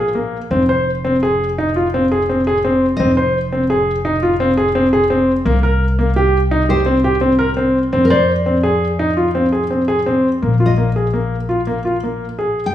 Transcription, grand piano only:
0, 0, Header, 1, 2, 480
1, 0, Start_track
1, 0, Tempo, 353149
1, 695, Time_signature, 7, 2, 24, 8
1, 10284, Tempo, 356506
1, 17261, End_track
2, 0, Start_track
2, 0, Title_t, "Grand piano"
2, 0, Program_c, 0, 0
2, 204, Note_on_c, 0, 58, 67
2, 488, Note_off_c, 0, 58, 0
2, 694, Note_on_c, 0, 60, 77
2, 835, Note_off_c, 0, 60, 0
2, 938, Note_on_c, 0, 72, 69
2, 1219, Note_off_c, 0, 72, 0
2, 1421, Note_on_c, 0, 60, 70
2, 1561, Note_off_c, 0, 60, 0
2, 1668, Note_on_c, 0, 68, 73
2, 1947, Note_off_c, 0, 68, 0
2, 2153, Note_on_c, 0, 63, 70
2, 2290, Note_off_c, 0, 63, 0
2, 2393, Note_on_c, 0, 65, 68
2, 2530, Note_off_c, 0, 65, 0
2, 2638, Note_on_c, 0, 60, 73
2, 2774, Note_off_c, 0, 60, 0
2, 2876, Note_on_c, 0, 68, 68
2, 3013, Note_off_c, 0, 68, 0
2, 3119, Note_on_c, 0, 60, 69
2, 3255, Note_off_c, 0, 60, 0
2, 3358, Note_on_c, 0, 68, 72
2, 3495, Note_off_c, 0, 68, 0
2, 3596, Note_on_c, 0, 60, 75
2, 3872, Note_off_c, 0, 60, 0
2, 4077, Note_on_c, 0, 60, 76
2, 4213, Note_off_c, 0, 60, 0
2, 4309, Note_on_c, 0, 72, 70
2, 4587, Note_off_c, 0, 72, 0
2, 4791, Note_on_c, 0, 60, 66
2, 4929, Note_off_c, 0, 60, 0
2, 5027, Note_on_c, 0, 68, 73
2, 5305, Note_off_c, 0, 68, 0
2, 5502, Note_on_c, 0, 63, 76
2, 5641, Note_off_c, 0, 63, 0
2, 5743, Note_on_c, 0, 65, 70
2, 5882, Note_off_c, 0, 65, 0
2, 5981, Note_on_c, 0, 60, 77
2, 6121, Note_off_c, 0, 60, 0
2, 6218, Note_on_c, 0, 68, 74
2, 6358, Note_off_c, 0, 68, 0
2, 6459, Note_on_c, 0, 60, 80
2, 6598, Note_off_c, 0, 60, 0
2, 6699, Note_on_c, 0, 68, 77
2, 6838, Note_off_c, 0, 68, 0
2, 6934, Note_on_c, 0, 60, 77
2, 7212, Note_off_c, 0, 60, 0
2, 7414, Note_on_c, 0, 58, 84
2, 7552, Note_off_c, 0, 58, 0
2, 7654, Note_on_c, 0, 70, 75
2, 7932, Note_off_c, 0, 70, 0
2, 8138, Note_on_c, 0, 58, 76
2, 8275, Note_off_c, 0, 58, 0
2, 8376, Note_on_c, 0, 67, 77
2, 8652, Note_off_c, 0, 67, 0
2, 8852, Note_on_c, 0, 63, 79
2, 8989, Note_off_c, 0, 63, 0
2, 9095, Note_on_c, 0, 67, 69
2, 9231, Note_off_c, 0, 67, 0
2, 9325, Note_on_c, 0, 60, 75
2, 9463, Note_off_c, 0, 60, 0
2, 9572, Note_on_c, 0, 67, 71
2, 9708, Note_off_c, 0, 67, 0
2, 9802, Note_on_c, 0, 60, 74
2, 9941, Note_off_c, 0, 60, 0
2, 10040, Note_on_c, 0, 70, 77
2, 10180, Note_off_c, 0, 70, 0
2, 10286, Note_on_c, 0, 60, 71
2, 10563, Note_off_c, 0, 60, 0
2, 10772, Note_on_c, 0, 60, 81
2, 10908, Note_off_c, 0, 60, 0
2, 11007, Note_on_c, 0, 72, 77
2, 11282, Note_off_c, 0, 72, 0
2, 11489, Note_on_c, 0, 60, 66
2, 11624, Note_off_c, 0, 60, 0
2, 11722, Note_on_c, 0, 68, 71
2, 11999, Note_off_c, 0, 68, 0
2, 12205, Note_on_c, 0, 63, 74
2, 12342, Note_off_c, 0, 63, 0
2, 12442, Note_on_c, 0, 65, 64
2, 12580, Note_off_c, 0, 65, 0
2, 12684, Note_on_c, 0, 60, 72
2, 12821, Note_off_c, 0, 60, 0
2, 12920, Note_on_c, 0, 68, 64
2, 13060, Note_off_c, 0, 68, 0
2, 13165, Note_on_c, 0, 60, 64
2, 13304, Note_off_c, 0, 60, 0
2, 13400, Note_on_c, 0, 68, 72
2, 13542, Note_off_c, 0, 68, 0
2, 13646, Note_on_c, 0, 60, 71
2, 13929, Note_off_c, 0, 60, 0
2, 14131, Note_on_c, 0, 58, 66
2, 14271, Note_off_c, 0, 58, 0
2, 14368, Note_on_c, 0, 65, 64
2, 14508, Note_off_c, 0, 65, 0
2, 14605, Note_on_c, 0, 58, 62
2, 14746, Note_off_c, 0, 58, 0
2, 14852, Note_on_c, 0, 68, 58
2, 14992, Note_off_c, 0, 68, 0
2, 15088, Note_on_c, 0, 58, 66
2, 15370, Note_off_c, 0, 58, 0
2, 15566, Note_on_c, 0, 65, 65
2, 15708, Note_off_c, 0, 65, 0
2, 15811, Note_on_c, 0, 58, 64
2, 15951, Note_off_c, 0, 58, 0
2, 16051, Note_on_c, 0, 65, 65
2, 16191, Note_off_c, 0, 65, 0
2, 16300, Note_on_c, 0, 58, 60
2, 16576, Note_off_c, 0, 58, 0
2, 16773, Note_on_c, 0, 68, 65
2, 17048, Note_off_c, 0, 68, 0
2, 17261, End_track
0, 0, End_of_file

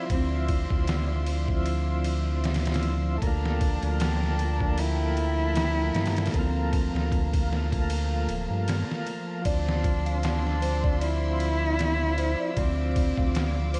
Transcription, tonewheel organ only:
0, 0, Header, 1, 2, 480
1, 0, Start_track
1, 0, Key_signature, -1, "minor"
1, 0, Tempo, 779221
1, 65, Time_signature, 4, 2, 24, 8
1, 8499, End_track
2, 0, Start_track
2, 0, Title_t, "Tonewheel organ"
2, 0, Program_c, 0, 16
2, 37, Note_on_c, 0, 53, 82
2, 66, Note_on_c, 0, 60, 73
2, 95, Note_on_c, 0, 64, 91
2, 745, Note_off_c, 0, 53, 0
2, 758, Note_on_c, 0, 53, 72
2, 760, Note_off_c, 0, 60, 0
2, 774, Note_off_c, 0, 64, 0
2, 786, Note_on_c, 0, 60, 64
2, 813, Note_on_c, 0, 64, 83
2, 1946, Note_off_c, 0, 53, 0
2, 1957, Note_on_c, 0, 57, 81
2, 1960, Note_off_c, 0, 60, 0
2, 1974, Note_off_c, 0, 64, 0
2, 1985, Note_on_c, 0, 58, 74
2, 2014, Note_on_c, 0, 65, 87
2, 2665, Note_off_c, 0, 57, 0
2, 2680, Note_off_c, 0, 58, 0
2, 2681, Note_on_c, 0, 57, 74
2, 2694, Note_off_c, 0, 65, 0
2, 2708, Note_on_c, 0, 58, 70
2, 2738, Note_on_c, 0, 53, 77
2, 3867, Note_off_c, 0, 57, 0
2, 3880, Note_on_c, 0, 57, 79
2, 3881, Note_off_c, 0, 58, 0
2, 3896, Note_off_c, 0, 53, 0
2, 3908, Note_on_c, 0, 58, 76
2, 3936, Note_on_c, 0, 65, 84
2, 4587, Note_off_c, 0, 57, 0
2, 4601, Note_off_c, 0, 58, 0
2, 4605, Note_on_c, 0, 57, 73
2, 4615, Note_off_c, 0, 65, 0
2, 4633, Note_on_c, 0, 58, 65
2, 4660, Note_on_c, 0, 65, 83
2, 5789, Note_off_c, 0, 57, 0
2, 5802, Note_on_c, 0, 53, 77
2, 5803, Note_off_c, 0, 58, 0
2, 5817, Note_off_c, 0, 65, 0
2, 5831, Note_on_c, 0, 60, 69
2, 6508, Note_off_c, 0, 53, 0
2, 6522, Note_off_c, 0, 60, 0
2, 6523, Note_on_c, 0, 53, 72
2, 6551, Note_on_c, 0, 60, 69
2, 7708, Note_off_c, 0, 53, 0
2, 7722, Note_off_c, 0, 60, 0
2, 7722, Note_on_c, 0, 53, 81
2, 7751, Note_on_c, 0, 60, 72
2, 8428, Note_off_c, 0, 53, 0
2, 8442, Note_off_c, 0, 60, 0
2, 8442, Note_on_c, 0, 53, 74
2, 8469, Note_on_c, 0, 60, 66
2, 8499, Note_off_c, 0, 53, 0
2, 8499, Note_off_c, 0, 60, 0
2, 8499, End_track
0, 0, End_of_file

